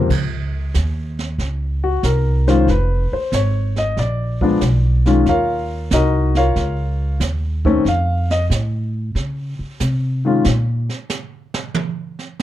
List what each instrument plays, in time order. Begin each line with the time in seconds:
0.10 upright bass C#2, brush sweep, kick, snare, crash
0.74 upright bass D#2, snare, hi-hat pedal
1.19 snare
1.38 upright bass C#2, brush sweep, snare
1.84 grand piano F#4
2.03 upright bass C2, grand piano A#4, snare, hi-hat pedal
2.47 grand piano D#3 G#3 C#4 F4 C5, snare
2.67 upright bass F1, grand piano B4, brush sweep, snare
3.12 grand piano C5, muted upright bass stroke
3.32 upright bass G#1, grand piano C#5, snare, hi-hat pedal
3.76 grand piano D#5, snare
3.97 upright bass A#1, grand piano D5, brush sweep, snare
4.41 grand piano F3 G#3 B3 D4, kick
4.61 upright bass B1, snare, hi-hat pedal
5.06 grand piano D#3 G#3 C#4 F4, snare
5.26 upright bass D#2, grand piano F4 A#4 C#5 F5, brush sweep, snare
5.91 upright bass C2, grand piano D#4 F#4 A#4 D#5, snare, hi-hat pedal
6.35 grand piano F4 A#4 C#5 F5, snare
6.56 upright bass C#2, brush sweep, snare
7.20 upright bass D#2, snare, hi-hat pedal
7.65 grand piano D#3 A3 C4 C#4, kick
7.85 upright bass F2, grand piano F5, brush sweep, snare
8.30 grand piano D#5, snare
8.50 upright bass A2, snare, hi-hat pedal
9.15 upright bass C#3, brush sweep, snare
9.59 muted upright bass stroke
9.80 upright bass C3, snare, hi-hat pedal
10.25 grand piano D#3 G#3 C#4 F4
10.44 upright bass A#2, snare
10.89 snare
11.09 snare, hi-hat pedal
11.54 snare
11.74 high tom
12.19 snare